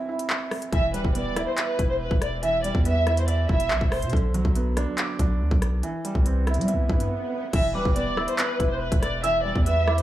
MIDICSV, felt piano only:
0, 0, Header, 1, 2, 480
1, 0, Start_track
1, 0, Tempo, 425532
1, 819, Time_signature, 4, 2, 24, 8
1, 11304, End_track
2, 0, Start_track
2, 0, Title_t, "Felt piano"
2, 0, Program_c, 0, 0
2, 0, Control_c, 0, 64, 127
2, 0, Note_on_c, 0, 52, 90
2, 0, Note_on_c, 0, 55, 74
2, 0, Note_on_c, 0, 60, 72
2, 0, Note_on_c, 0, 64, 93
2, 0, Note_on_c, 0, 76, 86
2, 98, Note_off_c, 0, 64, 0
2, 98, Note_on_c, 0, 64, 77
2, 338, Note_off_c, 0, 55, 0
2, 579, Note_off_c, 0, 60, 0
2, 818, Note_off_c, 0, 64, 0
2, 819, Note_off_c, 0, 76, 0
2, 820, Note_off_c, 0, 52, 0
2, 820, Note_on_c, 0, 52, 90
2, 835, Control_c, 0, 64, 0
2, 1058, Note_on_c, 0, 55, 80
2, 1064, Control_c, 0, 64, 127
2, 1298, Note_on_c, 0, 59, 72
2, 1540, Note_on_c, 0, 64, 98
2, 1778, Note_on_c, 0, 76, 85
2, 2001, Note_off_c, 0, 64, 0
2, 2018, Note_on_c, 0, 64, 81
2, 2019, Note_off_c, 0, 52, 0
2, 2258, Note_off_c, 0, 55, 0
2, 2498, Note_off_c, 0, 59, 0
2, 2739, Note_on_c, 0, 52, 86
2, 2978, Note_off_c, 0, 76, 0
2, 2979, Note_on_c, 0, 55, 78
2, 3218, Note_off_c, 0, 64, 0
2, 3223, Note_on_c, 0, 59, 78
2, 3462, Note_on_c, 0, 64, 92
2, 3700, Note_on_c, 0, 76, 92
2, 3924, Note_off_c, 0, 64, 0
2, 3939, Note_off_c, 0, 52, 0
2, 3941, Note_on_c, 0, 64, 78
2, 4179, Note_off_c, 0, 55, 0
2, 4421, Note_off_c, 0, 59, 0
2, 4658, Note_on_c, 0, 50, 90
2, 4660, Note_off_c, 0, 64, 0
2, 4660, Note_off_c, 0, 76, 0
2, 4671, Control_c, 0, 64, 0
2, 4880, Control_c, 0, 64, 127
2, 4899, Note_on_c, 0, 54, 82
2, 5140, Note_on_c, 0, 59, 77
2, 5380, Note_on_c, 0, 62, 101
2, 5620, Note_on_c, 0, 74, 88
2, 5844, Note_off_c, 0, 62, 0
2, 5858, Note_off_c, 0, 50, 0
2, 5861, Note_on_c, 0, 62, 76
2, 6099, Note_off_c, 0, 54, 0
2, 6339, Note_off_c, 0, 59, 0
2, 6579, Note_off_c, 0, 74, 0
2, 6579, Note_on_c, 0, 52, 89
2, 6580, Note_off_c, 0, 62, 0
2, 6595, Control_c, 0, 64, 0
2, 6801, Control_c, 0, 64, 127
2, 6820, Note_on_c, 0, 55, 75
2, 7059, Note_on_c, 0, 60, 70
2, 7300, Note_on_c, 0, 64, 91
2, 7539, Note_on_c, 0, 76, 84
2, 7762, Note_off_c, 0, 64, 0
2, 7779, Note_off_c, 0, 52, 0
2, 7779, Note_on_c, 0, 64, 75
2, 8019, Note_off_c, 0, 55, 0
2, 8259, Note_off_c, 0, 60, 0
2, 8499, Note_off_c, 0, 64, 0
2, 8499, Note_off_c, 0, 76, 0
2, 8501, Note_on_c, 0, 52, 92
2, 8513, Control_c, 0, 64, 0
2, 8688, Control_c, 0, 64, 127
2, 8739, Note_on_c, 0, 55, 85
2, 8978, Note_on_c, 0, 59, 72
2, 9219, Note_on_c, 0, 64, 99
2, 9460, Note_on_c, 0, 76, 85
2, 9681, Note_off_c, 0, 64, 0
2, 9698, Note_on_c, 0, 64, 84
2, 9700, Note_off_c, 0, 52, 0
2, 9939, Note_off_c, 0, 55, 0
2, 10178, Note_off_c, 0, 59, 0
2, 10421, Note_on_c, 0, 52, 91
2, 10659, Note_off_c, 0, 76, 0
2, 10659, Note_on_c, 0, 55, 80
2, 10898, Note_off_c, 0, 64, 0
2, 10900, Note_on_c, 0, 59, 81
2, 11141, Note_on_c, 0, 64, 94
2, 11304, Note_off_c, 0, 52, 0
2, 11304, Note_off_c, 0, 55, 0
2, 11304, Note_off_c, 0, 59, 0
2, 11304, Note_off_c, 0, 64, 0
2, 11304, End_track
0, 0, End_of_file